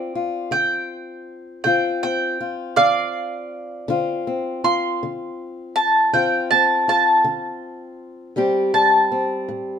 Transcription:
0.00 1.65 C4 medium
0.00 0.15 F4 medium
0.00 0.49 D5 medium
0.15 1.66 F4 medium
0.51 1.19 D3 medium
0.51 1.61 G5 medium
1.64 2.32 D3 medium
1.64 2.03 C4 medium
1.64 2.39 F4 medium
1.64 2.00 G5 medium
2.03 3.88 C4 medium
2.03 2.75 G5 medium
2.41 3.85 F4 medium
2.76 3.44 D3 medium
2.76 4.22 D5 medium
2.76 4.22 F5 loud
3.88 4.56 D3 medium
3.88 4.27 C4 medium
3.88 4.63 F4 medium
4.27 6.13 C4 medium
4.64 6.13 F4 medium
4.64 5.73 C6 loud
5.03 5.69 D3 medium
5.76 6.12 A5 loud
6.13 6.80 D3 medium
6.13 6.51 C4 medium
6.13 6.87 F4 medium
6.13 6.49 G5 medium
6.51 8.37 C4 medium
6.51 6.87 A5 loud
6.88 8.33 F4 medium
6.88 8.34 A5 loud
7.24 7.92 D3 medium
8.36 9.04 A2 medium
8.36 8.74 G3 medium
8.36 9.11 C4 medium
8.36 9.79 G4 medium
8.74 9.79 G3 medium
8.74 9.79 A5 loud
9.12 9.79 C4 medium
9.48 9.79 A2 medium

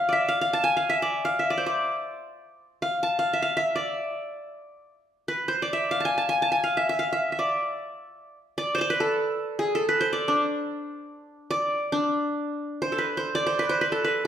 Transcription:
0.00 0.19 F5 medium
0.09 1.02 D5 medium
0.09 0.35 E5 medium
0.29 0.41 F5 medium
0.41 0.76 F5 medium
0.53 0.70 A5 medium
0.64 1.44 G#5 medium
0.77 0.96 F5 medium
0.90 1.31 E5 medium
1.02 1.50 D5 medium
1.25 1.45 F5 medium
1.39 2.31 E5 medium
1.50 1.66 D5 medium
1.58 2.63 C5 medium
1.66 2.65 D5 medium
2.82 3.18 F5 medium
3.03 3.80 A5 medium
3.19 3.39 F5 medium
3.33 3.48 E5 medium
3.42 3.63 F5 medium
3.57 4.49 E5 medium
3.76 4.93 D5 medium
5.28 5.54 B4 medium
5.48 6.54 C5 medium
5.62 6.61 D5 medium
5.73 5.97 E5 medium
5.91 6.63 F5 medium
6.00 6.11 A5 medium
6.05 6.24 G#5 medium
6.18 6.35 A5 medium
6.29 6.48 G#5 medium
6.42 6.58 A5 medium
6.52 7.32 G#5 medium
6.64 6.83 F5 medium
6.77 6.89 E5 medium
6.89 7.05 E5 medium
6.99 7.19 F5 medium
7.13 7.32 E5 medium
7.32 8.24 E5 soft
7.39 8.37 D5 medium
8.58 8.78 D5 medium
8.75 8.81 C5 medium
8.75 9.77 D5 medium
8.81 8.96 C5 medium
8.90 9.88 B4 medium
9.00 9.65 A4 medium
9.59 9.81 G#4 medium
9.75 10.92 A4 medium
9.89 10.07 B4 medium
10.01 11.06 C5 medium
10.13 11.11 D5 medium
10.28 11.77 D4 medium
11.51 12.49 D5 medium
11.92 13.42 D4 medium
12.82 13.04 C5 medium
12.92 13.92 A4 medium
12.98 13.23 B4 medium
13.17 13.46 C5 medium
13.35 14.27 D5 medium
13.47 13.65 C5 medium
13.59 13.75 B4 medium
13.69 13.87 C5 medium
13.81 14.04 B4 medium
13.92 14.25 A4 medium
14.05 14.27 B4 medium

